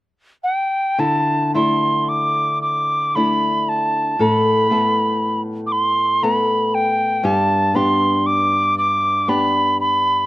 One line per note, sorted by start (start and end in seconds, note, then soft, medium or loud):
0.44 1.01 G5 soft
0.98 4.19 D3 medium
0.98 1.55 E4 soft
0.98 1.54 A5 medium
1.54 3.15 A3 soft
1.54 3.15 D4 soft
1.54 3.16 E4 soft
1.54 2.10 C6 medium
2.09 2.61 D6 medium
2.62 3.17 D6 medium
3.15 4.70 A3 soft
3.15 4.29 D4 soft
3.15 4.20 E4 soft
3.15 3.70 B5 medium
3.69 4.23 A5 medium
4.19 7.24 A2 medium
4.19 4.70 A4 soft
4.19 5.42 B5 medium
4.70 6.21 A3 soft
4.70 6.23 B3 soft
4.70 6.23 A4 soft
5.67 5.74 D6 soft
5.72 6.25 C6 medium
6.23 7.34 A3 soft
6.23 7.74 B3 soft
6.23 7.24 A4 soft
6.23 6.34 A#5 medium
6.34 6.76 B5 medium
6.74 7.26 G5 medium
7.23 10.26 G2 medium
7.23 7.76 G4 medium
7.23 7.77 A5 medium
7.74 9.27 B3 soft
7.74 9.28 D4 soft
7.74 9.29 G4 soft
7.74 8.28 C6 medium
8.26 8.77 D6 medium
8.78 9.31 D6 medium
9.28 10.26 B3 soft
9.28 10.26 D4 soft
9.28 10.26 G4 medium
9.28 9.80 B5 medium
9.80 10.26 B5 medium